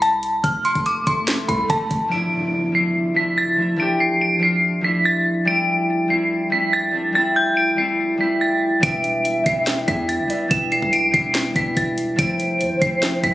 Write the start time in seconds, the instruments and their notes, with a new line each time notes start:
Already playing: 808-style bass C2
0.02 synth bell A5, closed hi-hat
0.23 closed hi-hat
0.44 808-style bass F1, synth bell F6, kick, closed hi-hat, swell
0.65 synth bell C6, closed hi-hat
0.75 808-style bass F1, kick, closed hi-hat
0.86 synth bell D6, closed hi-hat
1.07 808-style bass F1, synth bell C6, kick, closed hi-hat
1.28 snare, closed hi-hat
1.48 808-style bass C2, synth bell B5, kick, closed hi-hat
1.70 808-style bass F1, synth bell A5, kick, closed hi-hat
1.91 808-style bass F1, kick, closed hi-hat
2.08 harp F3 A3 D4, synth bell D7, impact
2.14 harp E4
2.72 harp F3 A3 D4, synth bell C7
2.77 harp E4
3.14 harp F3 A3 D4, synth bell B6
3.20 harp E4
3.38 synth bell A6
3.57 harp F3 A3 D4
3.62 harp E4
3.76 harp F3 A3 D4, synth bell D7
3.82 harp G4
4.00 synth bell C7
4.21 synth bell D7
4.39 harp F3 A3 D4, synth bell C7
4.45 harp F4
4.81 harp F3 A3 D4, synth bell B6
4.86 harp E4
5.05 synth bell A6
5.45 harp G3 A3 C4, synth bell D7
5.50 harp E4
6.08 harp G3 A3 C4, synth bell C7
6.13 harp E4
6.50 harp G3 A3 C4, synth bell B6
6.55 harp E4
6.73 synth bell A6
6.91 harp G3 A3 C4
6.97 harp D4
7.13 harp G3 A3 C4, synth bell A6
7.18 harp E4
7.36 synth bell G6
7.57 synth bell D7
7.76 harp G3 A3 C4, synth bell C7
7.81 harp E4
8.18 harp G3 A3 C4, synth bell B6
8.23 harp E4
8.41 synth bell A6
8.80 808-style bass E1, harp G3 B3 D4, soft synth lead E5, synth bell D7, kick, closed hi-hat
8.86 harp E4
9.04 closed hi-hat
9.25 closed hi-hat
9.43 808-style bass E1, harp G3 B3 D4, synth bell C7, kick, closed hi-hat
9.49 harp E4
9.67 snare, closed hi-hat
9.85 808-style bass E2, harp G3 B3 D4, synth bell B6, kick, closed hi-hat
9.91 harp E4
10.09 synth bell A6, closed hi-hat
10.19 808-style bass F1
10.27 harp G3 B3 D4, soft synth lead D5, closed hi-hat
10.33 harp E4
10.48 808-style bass E1, harp G3 B3 D4, synth bell E7, kick, closed hi-hat
10.53 harp E4
10.72 synth bell C7, closed hi-hat
10.82 808-style bass B1, kick
10.93 synth bell D7, closed hi-hat
11.11 808-style bass E1, harp G3 B3 D4, synth bell C7, kick, closed hi-hat
11.16 harp E4
11.35 snare, closed hi-hat
11.53 808-style bass E1, harp G3 B3 D4, synth bell B6, kick, closed hi-hat
11.58 harp E4
11.77 808-style bass E1, synth bell A6, kick, closed hi-hat
11.98 closed hi-hat
12.16 808-style bass F1, harp F3 A3 C4, soft synth lead C5, synth bell D7, kick, closed hi-hat
12.21 harp E4
12.40 closed hi-hat
12.61 808-style bass F2, closed hi-hat
12.71 808-style bass F1
12.79 808-style bass F1, harp F3 A3 C4, synth bell C7, kick, closed hi-hat
12.84 harp E4
13.03 snare, closed hi-hat
13.20 808-style bass C2, harp F3 A3 C4, synth bell B6, kick, closed hi-hat
13.25 harp E4